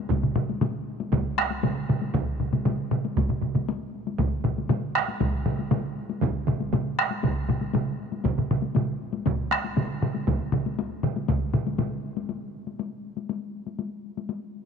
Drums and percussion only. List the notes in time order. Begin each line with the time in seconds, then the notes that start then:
0.10 taiko, taiko low-mid, taiko mid, taiko high
0.23 taiko low-mid, taiko mid
0.36 taiko low-mid, taiko mid
0.49 taiko high
0.61 taiko low-mid, taiko mid, taiko high
1.00 taiko high
1.12 taiko, taiko low-mid, taiko mid, taiko high
1.38 taiko rim, taiko high
1.50 taiko high
1.63 taiko low-mid, taiko mid, taiko high
1.89 taiko low-mid, taiko mid
2.02 taiko high
2.14 taiko, taiko low-mid, taiko mid, taiko high
2.40 taiko low-mid, taiko mid
2.53 taiko low-mid, taiko mid, taiko high
2.65 taiko low-mid, taiko mid, taiko high
2.91 taiko low-mid, taiko mid
3.05 taiko high
3.16 taiko, taiko low-mid, taiko mid, taiko high
3.29 taiko low-mid, taiko mid
3.41 taiko low-mid, taiko mid
3.55 taiko low-mid, taiko mid, taiko high
3.69 taiko high
4.07 taiko high
4.18 taiko, taiko low-mid, taiko mid, taiko high
4.44 taiko low-mid, taiko mid
4.58 taiko high
4.69 taiko low-mid, taiko mid, taiko high
4.95 taiko rim
5.08 taiko high
5.20 taiko, taiko low-mid, taiko mid, taiko high
5.46 taiko low-mid, taiko mid, taiko high
5.59 taiko high
5.71 taiko low-mid, taiko mid, taiko high
6.10 taiko high
6.21 taiko, taiko low-mid, taiko mid, taiko high
6.47 taiko low-mid, taiko mid
6.60 taiko high
6.73 taiko low-mid, taiko mid, taiko high
6.99 taiko rim
7.11 taiko high
7.23 taiko, taiko low-mid, taiko mid, taiko high
7.49 taiko low-mid, taiko mid, taiko high
7.61 taiko high
7.73 taiko low-mid, taiko mid, taiko high
8.12 taiko high
8.24 taiko, taiko low-mid, taiko mid, taiko high
8.38 taiko low-mid, taiko mid
8.51 taiko low-mid, taiko mid
8.62 taiko high
8.75 taiko low-mid, taiko mid, taiko high
9.13 taiko high
9.26 taiko, taiko low-mid, taiko mid, taiko high
9.51 taiko rim, taiko high
9.64 taiko high
9.77 taiko low-mid, taiko mid, taiko high
10.02 taiko low-mid, taiko mid
10.14 taiko high
10.28 taiko, taiko low-mid, taiko mid, taiko high
10.52 taiko low-mid, taiko mid
10.66 taiko high
10.79 taiko high
11.03 taiko low-mid, taiko mid
11.16 taiko high
11.28 taiko, taiko low-mid, taiko mid, taiko high
11.54 taiko low-mid, taiko mid
11.67 taiko high
11.78 taiko low-mid, taiko mid, taiko high
12.17 taiko high
12.29 taiko high
12.67 taiko high
12.79 taiko high
13.17 taiko high
13.29 taiko high
13.67 taiko high
13.79 taiko high
14.17 taiko high
14.29 taiko high